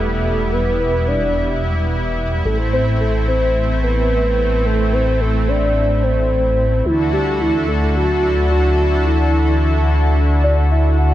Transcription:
Already playing: E1 G3 B3 E4 A4
0.25 A4
0.53 B4
0.80 B4
1.08 D5
2.45 A1 A3 C4 A4
2.73 C5
3.00 A4
3.28 C5
3.83 B4
4.65 A4
4.93 C5
5.21 A4
5.48 D5
6.03 C5
6.86 D2 D3 D4 E4 F#4 A4
7.13 G4
7.41 E4
7.68 A4
7.96 F#4
8.51 F#4
9.06 E4
10.44 D5
10.71 E5
10.99 F#5

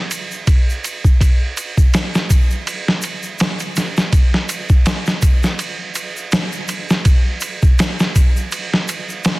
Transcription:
0.11 ride, shaker
0.31 shaker
0.47 kick, ride, shaker
0.70 shaker
0.84 ride, shaker
1.04 kick, shaker
1.21 kick, ride, shaker
1.57 ride, shaker
1.77 kick, shaker
1.94 snare, ride, shaker
2.14 snare, shaker
2.30 kick, ride, shaker
2.50 shaker
2.67 ride, shaker
2.88 snare
3.02 ride, shaker
3.23 shaker
3.39 snare, ride, shaker
3.59 ride, shaker
3.76 snare, ride, shaker
3.97 snare, shaker
4.13 kick, ride, shaker
4.34 snare
4.49 ride, shaker
4.69 kick, shaker
4.86 snare, ride, shaker
5.06 snare, shaker
5.22 kick, ride, shaker
5.43 snare, shaker
5.59 ride, shaker
5.95 ride, shaker
6.17 shaker
6.32 snare, ride, shaker
6.52 shaker
6.68 ride, shaker
6.89 snare, shaker
7.05 kick, ride, shaker
7.41 ride, shaker
7.62 kick, shaker
7.79 snare, ride, shaker
7.99 snare, shaker
8.15 kick, ride, shaker
8.36 shaker
8.52 ride, shaker
8.74 snare
8.88 ride, shaker
9.09 shaker
9.24 snare, ride, shaker

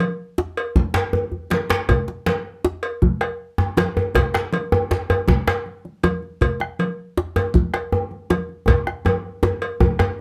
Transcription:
0.00 cowbell, high conga
0.38 djembe slap, djembe tone
0.57 cowbell
0.75 bombo low, djembe slap, high conga, djembe bass, low conga
0.94 cowbell, djembe slap
1.13 bombo rim, djembe tone, high conga
1.32 high conga, djembe bass
1.50 bombo rim, cowbell, djembe slap, high conga
1.70 djembe slap
1.89 bombo low, cowbell, djembe tone, high conga, djembe bass, low conga
2.08 djembe slap, high conga
2.26 cowbell, djembe slap, high conga
2.65 bombo rim, djembe slap, djembe tone
2.83 cowbell
3.02 bombo low, high conga, low conga, djembe bass
3.21 bombo rim, cowbell, djembe slap
3.58 djembe slap, djembe tone, high conga
3.77 cowbell, djembe slap, high conga, djembe tone
3.96 high conga, djembe tone
4.14 bombo low, cowbell, djembe slap, high conga, low conga, djembe bass
4.34 bombo rim, djembe slap, high conga
4.53 cowbell, djembe slap, high conga
4.72 djembe tone
4.91 bombo rim, djembe slap, djembe tone
5.10 cowbell, djembe tone
5.28 bombo low, djembe slap, high conga, low conga, djembe bass
5.48 bombo rim, cowbell, djembe slap
5.66 high conga
5.85 djembe slap, high conga
6.03 cowbell, djembe slap, high conga, djembe tone
6.22 high conga
6.41 bombo low, cowbell, high conga, low conga, djembe bass
6.60 bombo rim, djembe slap, high conga
6.79 cowbell, djembe slap, high conga
7.17 bombo rim, djembe slap, djembe tone
7.36 cowbell, djembe tone
7.54 bombo low, high conga, low conga, djembe bass
7.74 bombo rim, cowbell, djembe slap
7.92 high conga, djembe tone
8.11 djembe slap, high conga
8.30 cowbell, djembe slap, high conga, djembe tone
8.49 high conga
8.68 bombo low, cowbell, djembe slap, djembe tone, high conga, low conga, djembe bass
8.87 bombo rim, djembe slap
9.05 bombo rim, cowbell, high conga, djembe tone
9.43 bombo rim, djembe slap, high conga, djembe tone
9.62 cowbell, high conga
9.80 bombo rim, bombo low, high conga, djembe tone, low conga, djembe bass
9.99 bombo rim, cowbell, djembe slap, djembe tone

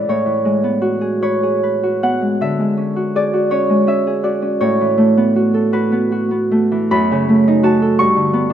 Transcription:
Already playing: E3 G#3 C#4 E4 G#4 D5 E5
0.09 A2 C#5
0.26 E3
0.45 G#3
0.64 B3
0.82 F#4
1.01 G#4
1.22 B4 C#5
1.43 G#4
1.63 B4
1.83 F#4
2.03 B3 F#5
2.21 G#3
2.41 D3 E5
2.59 G#3
2.77 C#4
2.96 F#4
3.15 G#4 D5
3.34 F#4
3.51 C#4 C#5
3.69 G#3
3.87 C#4 E5
4.07 G#4
4.23 F#4 D5
4.42 C#4
4.61 A2 C#5
4.81 E3
4.97 A3
5.17 B3
5.36 F#4
5.54 A4
5.73 F#4 B4
5.92 B3
6.12 F#4
6.31 B3
6.51 A3
6.72 E3
6.91 F#2 B5
7.11 C#3
7.29 A3
7.48 D#4
7.63 F#4 A5
7.82 A4
7.99 G2 C#6
8.16 D3
8.33 B3
8.50 D4

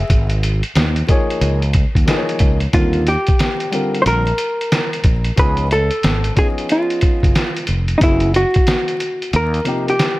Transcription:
Already playing: E5
0.00 G#4
0.10 G#1, kick, closed hi-hat
0.30 closed hi-hat
0.43 closed hi-hat
0.63 closed hi-hat
0.75 D#2, snare, closed hi-hat
0.96 closed hi-hat
1.07 F3 A#3 D#4 G#4 C#5, kick, closed hi-hat
1.30 closed hi-hat
1.41 C#2, closed hi-hat
1.62 closed hi-hat
1.73 kick, closed hi-hat
1.95 D#2, kick, closed hi-hat
2.06 F3 A#3 D#4 G#4, snare, closed hi-hat
2.10 B4
2.17 C#5
2.29 closed hi-hat
2.39 C#2, kick, closed hi-hat
2.60 closed hi-hat
2.73 D#2 D3 G3 C4 F4 A#4, kick, closed hi-hat
2.93 closed hi-hat
3.07 G4, closed hi-hat
3.27 kick, closed hi-hat
3.39 snare, closed hi-hat
3.60 closed hi-hat
3.71 D3 G3 C4 F4 A#4, closed hi-hat
3.94 closed hi-hat
4.02 A#1 C5
4.06 A#4, closed hi-hat
4.27 closed hi-hat
4.38 closed hi-hat
4.61 closed hi-hat
4.72 snare, closed hi-hat
4.93 closed hi-hat
5.04 A#1, kick, closed hi-hat
5.24 closed hi-hat
5.36 C#2 F3 B3 C#4 D#4 B4, kick, closed hi-hat
5.40 G#4
5.57 closed hi-hat
5.71 A4, closed hi-hat
5.91 closed hi-hat
6.03 G#1, snare, closed hi-hat
6.24 closed hi-hat
6.35 F3 B3 C#4 D#4 G#4, kick, closed hi-hat
6.58 closed hi-hat
6.69 F4, closed hi-hat
6.90 closed hi-hat
7.01 kick, closed hi-hat
7.23 F#1, kick, closed hi-hat
7.35 snare, closed hi-hat
7.56 closed hi-hat
7.67 F1, closed hi-hat
7.88 closed hi-hat
7.98 F#1 C#3 F#3 B3 D#4, kick, closed hi-hat
8.02 E4 G#4
8.20 closed hi-hat
8.34 F#4, closed hi-hat
8.54 kick, closed hi-hat
8.67 snare, closed hi-hat
8.88 closed hi-hat
9.00 closed hi-hat
9.22 closed hi-hat
9.33 D#2 A#4, closed hi-hat
9.54 closed hi-hat
9.64 C3 F3 A#3 D#4 G4, closed hi-hat
9.88 G4, closed hi-hat
9.99 snare, closed hi-hat

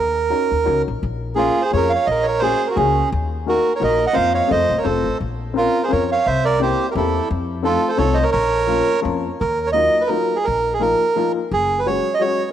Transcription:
Already playing: D#2 A#4
0.30 C#4 D#4 F#4 A#4
0.51 D#2
0.64 C#2 C#4 D#4 F#4 A#4
0.88 A#1
1.03 A#1
1.35 A#3 C#4 F4 G#4
1.62 G#4 C5
1.71 F2 A#3 C#4 F4 G#4 C#5
1.76 A#4
1.90 F5
1.95 C#5
2.06 A#1 D#5
2.11 A#4
2.23 C#5
2.28 A#4
2.39 A#3 C#4 F#4 G#4 C5
2.67 F#4 A#4
2.76 C#2 A#3 C#4 F#4 G#4
3.12 D#2
3.46 A#3 D#4 F#4 A#4
3.75 A#4 C#5
3.80 A#1 A#3 D#4 F#4 A#4 D#5
4.07 D#5 F#5
4.13 F2 A#3 C4 F4 A#4 C5 F5
4.34 C#5 F5
4.47 F2 A3 C4 F4 A4 D#5
4.52 C5
4.69 D#1
4.78 A#4 C#5
4.83 F1 A3 C4 F4 A4 C5
5.04 A1
5.20 A#1
5.54 C4 C#4 F4 A#4
5.58 A#4
5.83 G#4 C5
5.88 C4 C#4 F4 A#4 C#5
5.93 F2
6.12 C#5 F5
6.26 C2 C5 E5
6.45 A#4 D5
6.59 A#3 C4 E4 G4 C5
6.91 G4 A#4
6.95 E2 A#3 C4 E4 G4 A4
7.31 F2
7.62 A3 C4 D#4 F4 A4
7.88 A4 C5
7.96 C2 A3 C4 D#4 F4 A4 C#5
8.14 C5 D#5
8.23 A#4 C#5
8.32 A#1 A#4 C#5
8.67 F3 A#3 C#4 F4
9.02 F2 F3 A#3 C#4 F4
9.41 D#2 A#4
9.67 C#5
9.72 F#3 A#3 D#4 F4 D#5
10.01 B4
10.07 F#3 A#3 D#4 F4 A#4
10.36 G#4
10.44 A#1 A#4
10.73 G#4
10.80 F3 A#3 D#4 F4 A#4
11.16 F3 A#3 D#4 F4
11.51 F#1 G#4
11.79 B4
11.86 F#3 G#3 C#4 F#4 C#5
12.14 D#5
12.19 F#3 G#3 C#4 F#4 C#5

